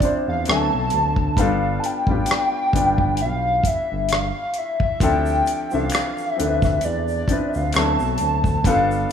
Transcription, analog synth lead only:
0.00 0.24 D5 loud
0.29 0.46 F5 medium
0.50 1.41 A5 loud
1.39 1.81 F5 medium
1.80 1.87 A5 medium
1.86 3.20 G5 loud
3.22 3.68 F5 loud
3.67 4.11 E5 medium
4.12 4.59 F5 medium
4.58 4.82 E5 medium
4.83 5.04 E5 medium
5.03 5.72 G5 loud
5.73 6.31 F5 loud
6.31 6.64 E5 loud
6.64 6.84 E5 medium
6.85 7.51 D5 loud
7.50 7.57 E5 medium
7.56 7.78 F5 medium
7.76 8.68 A5 medium
8.67 9.11 F5 medium

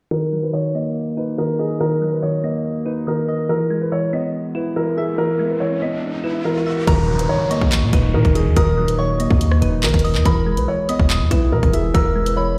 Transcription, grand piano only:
0.11 0.41 A#4 loud
0.43 0.53 B4 medium
0.53 0.72 C#5 medium
0.75 1.14 D#5 medium
1.18 1.36 B4 medium
1.38 1.57 A#4 medium
1.59 1.78 G#4 medium
1.80 2.10 A#4 loud
2.13 2.22 B4 medium
2.22 2.42 C#5 medium
2.44 2.84 D#5 medium
2.85 3.05 B4 medium
3.08 3.47 A#4 medium
3.49 3.79 A#4 medium
3.81 3.91 B4 medium
3.92 4.11 C#5 medium
4.14 4.53 D#5 medium
4.56 4.74 B4 medium
4.76 4.95 A#4 medium
4.97 5.16 G#4 medium
5.18 5.48 A#4 loud
5.50 5.60 B4 medium
5.60 5.79 C#5 medium
5.82 6.22 D#5 medium
6.24 6.43 B4 medium
6.45 6.85 A#4 medium
6.87 7.17 A#4 loud
7.19 7.29 B4 medium
7.29 7.48 C#5 medium
7.51 7.90 D#5 medium
7.94 8.12 B4 medium
8.14 8.33 A#4 loud
8.35 8.54 G#4 medium
8.56 8.86 A#4 loud
8.89 8.98 B4 medium
8.99 9.18 C#5 medium
9.20 9.60 D#5 medium
9.61 9.81 B4 medium
9.84 10.23 A#4 medium
10.25 10.55 A#4 loud
10.57 10.67 B4 medium
10.68 10.87 C#5 medium
10.90 11.29 D#5 medium
11.32 11.50 B4 medium
11.52 11.71 A#4 loud
11.73 11.92 G#4 medium
11.94 12.24 A#4 loud
12.26 12.36 B4 medium
12.36 12.55 C#5 medium

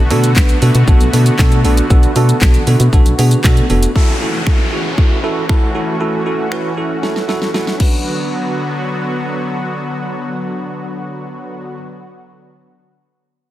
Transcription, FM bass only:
0.00 0.12 B1 loud
0.11 0.38 B2 loud
0.36 0.53 B1 loud
0.62 0.70 B2 medium
0.75 0.83 B2 loud
0.88 0.96 B1 loud
1.01 1.09 B1 loud
1.13 1.30 B2 loud
1.39 1.66 B2 loud
1.65 1.81 A#1 medium
1.90 2.07 B1 loud
2.16 2.33 B2 loud
2.42 2.58 B1 loud
2.67 2.76 B2 loud
2.80 2.88 B2 loud
2.93 3.01 B1 loud
3.06 3.14 B1 loud
3.19 3.35 B2 loud
3.44 3.61 B2 loud
3.70 3.87 F1 loud

